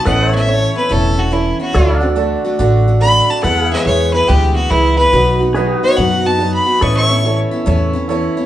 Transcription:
0.04 A1 A2 E3 B3 C#4 E4 A4 B4 C#5 D#5 F#5
0.28 C#5 E5
0.32 B3 C#4 E4 E5
0.46 E3 B3 C#4 E4 A4 C#5
0.74 B3 C#4 E4 B4
0.89 E1 A2 E3 B3 C#4 E4 A4 C#5
1.16 B3 C#4 E4 F#4
1.31 E3 B3 C#4 E4 A4 C#5
1.60 B3 C#4 E4 F#4
1.73 D2 D3 A3 D4 F#4 A4 C#5 D5 E5
1.95 D5
2.00 A3 D4 F#4 F#5
2.15 D3 A3 D4 F#4 A4 D5
2.45 A3 D4 F#4
2.58 A1 D3 A3 D4 F#4 A4 D5
2.88 A3 D4 F#4
3.00 D3 A3 D4 F#4 A4 D5 B5
3.29 A3 D4 F#4 A5
3.42 E2 B2 E3 G#3 B3 E4 G#4 A4 B4 F#5
3.63 G#4
3.70 E3 G#3 B3 E4 E5
3.85 E2 E3 G#3 B3 E4 G#4 B4 C#5
4.13 E3 G#3 B3 E4 B4
4.26 D2 E2 B2 E3 G#3 B3 E4 G4 G#4 B4
4.55 E3 G#3 B3 E4 F#4
4.69 C#2 E3 G#3 B3 E4 G#4 B4
4.98 E3 G#3 B3 E4 B4
5.13 B1 B2 F#3 B3 D#4 F#4 B4
5.40 B3 D#4 F#4
5.55 F#3 B3 D#4 F#4 G#4 B4 D#5
5.80 F#4
5.84 B3 D#4 C#5
5.97 F#2 B2 F#3 B3 D#4 F#4 B4 F#5
6.25 B3 D#4 F#4 A5
6.38 F#3 B3 D#4 F#4 B4
6.54 B5
6.66 B3 D#4 F#4
6.81 A1 A2 E3 B3 C#4 E4 A4 B4 C#5 D#5 C#6
6.97 C#6
7.03 C#5 E5
7.10 B3 C#4 E4
7.24 E3 B3 C#4 E4 A4 C#5
7.51 B3 C#4 E4
7.65 E2 A2 E3 B3 C#4 E4 A4 C#5
7.93 B3 C#4 E4
8.08 E3 B3 C#4 E4 A4 C#5
8.37 B3 C#4 E4

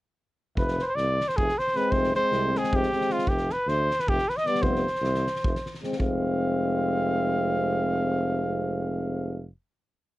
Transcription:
0.56 F1 B4, kick
0.68 snare
0.79 C5, snare
0.85 B4 C5
0.95 C2 D5, snare
1.21 snare
1.28 C5, snare
1.37 F1 G#4, kick
1.49 snare
1.59 C5, snare
1.67 snare
1.75 G#3 C4 B4, snare
1.91 F1 C5, kick
2.04 snare
2.14 G#3 C4 C5, snare
2.32 C2, snare
2.53 G#3 C4, snare
2.58 G#4
2.64 snare
2.72 F1 G4, kick
2.83 snare
2.92 G#3 C4, snare
3.01 snare
3.10 F4, snare
3.19 snare
3.27 F1 G4, kick
3.38 snare
3.50 B4, snare
3.67 D2 C5, snare
3.90 snare
3.99 B4, snare
4.07 F1 G4, kick
4.18 snare
4.29 B4, snare
4.37 D#5, snare
4.46 G3 B3 D5, snare
4.55 snare
4.62 F1 C5, kick
4.75 snare
4.87 snare
4.95 snare
5.02 C2, snare
5.15 snare
5.27 snare
5.36 snare
5.44 F1, kick
5.56 snare
5.66 snare
5.74 snare
5.82 G#3 C4, snare
5.92 snare
5.98 F1 G#3 C4 F5, kick

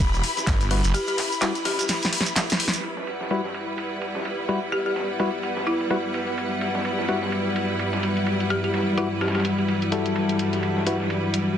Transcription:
Already playing: E1 E4 G4 B4 B5
0.00 kick, closed hi-hat, ride
0.13 E1, shekere
0.23 open hi-hat, ride
0.37 snare, closed hi-hat, shekere
0.47 G1, kick, snare, clap, closed hi-hat, ride, shekere
0.61 closed hi-hat, shekere
0.71 G3 E4 F#4 B4, open hi-hat, ride
0.84 F#1, closed hi-hat, shekere
0.94 G4, closed hi-hat, ride, shekere
1.07 G4, closed hi-hat, shekere
1.18 snare, clap, open hi-hat, ride
1.32 shekere
1.41 G3 E4 F#4 B4, snare, clap, closed hi-hat, ride, shekere
1.55 closed hi-hat, shekere
1.65 G4, snare, open hi-hat, ride
1.79 G4, snare, closed hi-hat, shekere
1.89 snare, closed hi-hat, ride, shekere
2.03 snare, closed hi-hat, shekere
2.13 open hi-hat, ride
2.21 snare
2.26 closed hi-hat, shekere
2.36 snare, clap, closed hi-hat, ride, shekere
2.50 snare, closed hi-hat, shekere
2.60 open hi-hat, ride
2.68 snare
2.73 closed hi-hat, shekere
2.83 G3 E4 F#4 B4, closed hi-hat, ride
2.91 G3 B4
2.97 snare, closed hi-hat
3.04 F#5, ride
3.21 snare
3.31 G3 E4 F#4 B4, ride
3.44 snare
3.54 ride
3.78 closed hi-hat, ride
4.02 ride
4.15 snare
4.25 closed hi-hat, ride
4.39 closed hi-hat
4.49 G3 E4 F#4 B4, ride
4.62 closed hi-hat
4.72 G4, closed hi-hat, ride
4.86 G4, closed hi-hat
4.96 snare, ride
5.19 G3 E4 F#4 B4, closed hi-hat, ride
5.43 ride
5.57 snare
5.67 E4, closed hi-hat, ride
5.81 ride
5.90 G3 E4 F#4 B4, ride
6.04 closed hi-hat
6.14 closed hi-hat, ride
6.28 closed hi-hat
6.38 ride
6.51 closed hi-hat
6.61 closed hi-hat, ride
6.75 snare, closed hi-hat
6.85 ride
6.99 snare
7.08 G3 E4 F#4 B4, closed hi-hat, ride
7.22 snare
7.32 ride
7.56 closed hi-hat, ride
7.79 ride
7.93 snare, closed hi-hat
8.03 closed hi-hat, ride
8.17 closed hi-hat
8.27 ride
8.40 closed hi-hat
8.50 G4, closed hi-hat, ride
8.64 G4, closed hi-hat
8.74 snare, ride
8.98 G3 E4 F#4 B4, closed hi-hat, ride
9.21 G4, snare, ride
9.28 snare, ride
9.35 G4, snare, ride
9.40 snare, ride
9.45 closed hi-hat, ride
9.58 ride
9.68 ride
9.82 closed hi-hat
9.92 G3 E4 F#4 A4, closed hi-hat, ride
10.06 closed hi-hat
10.16 ride
10.29 closed hi-hat
10.39 D5, closed hi-hat, ride
10.53 snare, closed hi-hat
10.63 ride
10.77 snare
10.86 G3 E4 F#4 B4, closed hi-hat, ride
11.00 snare
11.10 ride
11.34 closed hi-hat, ride

